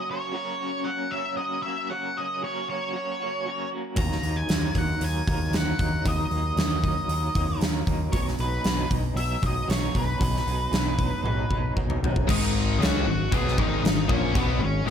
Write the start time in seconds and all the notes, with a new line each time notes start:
Already playing: F#2 C#3
0.07 F#3 A#3 C#4 F#4 C#5
0.32 F#2 C#3 F#3 A#3 C#4 F#4
0.58 F#3 A#3 C#4 F#4
0.84 F#3 A#3 C#4 F#4 F#5
1.10 F#2 C#3 F#3 A#3 C#4 F#4 E5
1.36 F#3 A#3 C#4 F#4 D#5
1.63 A#3 C#4 F#4 E5
1.67 F#3
1.90 F#2 C#3 F#3 A#3 C#4 F#4 F#5
2.16 F#3 A#3 C#4 F#4 D#5
2.42 F#2 C#3 F#3 A#3 C#4 F#4 C#5
2.67 F#3 A#3 C#4 F#4 C#5
2.94 F#3 A#3 C#4 F#4
3.20 F#2 C#3 F#3 A#3 C#4 F#4
3.46 F#3 A#3 C#4 F#4
3.71 F#3 A#3 C#4 F#4
3.96 D#2 D#3 F#3 A#3 A#5, kick, open hi-hat
4.00 D#4
4.12 snare
4.22 D#2 F#3 A#3 D#4, open hi-hat
4.36 G#5
4.49 D#2 D#3 F#3 A#3 D#4, snare, open hi-hat
4.75 D#2 A#3 D#4 F#5, kick, open hi-hat
4.79 F#3
5.00 D#2 D#3 F#3 A#3 D#4 G#5, open hi-hat
5.27 D#2 D#3 F#3 A#3 D#4, kick, open hi-hat
5.51 D#2 D#3 F#3, snare, open hi-hat
5.55 A#3 D#4 F#5
5.79 D#2 A#3 D#4, kick, open hi-hat
5.83 F#3
6.04 D#2 D#3 F#3 A#3 D#5, kick, open hi-hat
6.09 D#4
6.31 D#2 A#3 D#4, open hi-hat
6.35 F#3
6.56 D#2 D#3 F#3 A#3, snare, open hi-hat
6.61 D#4
6.84 F#3 A#3 D#4, kick, open hi-hat
7.08 D#2 D#3 F#3, open hi-hat
7.12 A#3 D#4
7.35 D#2 F#3 A#3 D#4, kick, open hi-hat
7.39 D#3
7.61 D#2 D#3 F#3 A#3 D#4, snare, open hi-hat
7.87 D#2 F#3 A#3 D#4, kick, open hi-hat
8.12 B1 B2 F#3 G#3 D#4 C#5, kick, open hi-hat
8.28 snare
8.38 B1 G#3 D#4 B4, open hi-hat
8.43 F#3
8.64 B1 B2 F#3 G#3, snare, open hi-hat
8.68 D#4
8.91 B1 F#3 G#3 D#4, kick, open hi-hat
9.15 B1 B2 F#3 E5, open hi-hat
9.19 G#3 D#4
9.42 B1 B2 F#3 G#3 D#4, kick, open hi-hat
9.46 D#5
9.67 B1 B2 F#3 G#3 D#4 C#5, snare, open hi-hat
9.94 B1 G#3 D#4 B4, kick, open hi-hat
9.98 F#3
10.19 B1 B2 F#3 G#3 D#4, kick, open hi-hat
10.36 snare
10.46 B1 F#3 G#3 D#4, open hi-hat
10.72 B1 B2 F#3 G#3 D#4, snare, open hi-hat
10.97 F#3 G#3 D#4, kick, open hi-hat
11.24 B1 B2 F#3 G#3 D#4, high tom
11.50 B1 B2 F#3 G#3 D#4, kick
11.76 B1 B2 F#3 G#3 D#4, kick
11.90 mid tom
12.02 B1 G#3 D#4, floor tom
12.06 F#3
12.16 kick
12.27 G#1 G#2 D#3 G#3 D#4 D#5, kick, crash
12.79 C#2 C#3 G#3 C#4 F#4, crash
12.83 F#5, snare
13.04 G#1 G#2 D#3 F#4
13.11 F#5
13.32 B1 B2 F#3 B3 G#4, kick, crash
13.36 G#5
13.48 snare
13.57 G#1 G#2 D#3 G#3 D#4, kick
13.62 D#5
13.82 G#1 G#2 D#3 D#4, snare, crash
13.87 D#5
14.09 A#1 A#2 F3 A#3 C#4, kick
14.15 C#5
14.35 B1 B2 F#3 B3, kick, crash
14.40 B4
14.59 G#1 G#2 D#3 C#4
14.64 C#5
14.85 G#1 G#2 D#4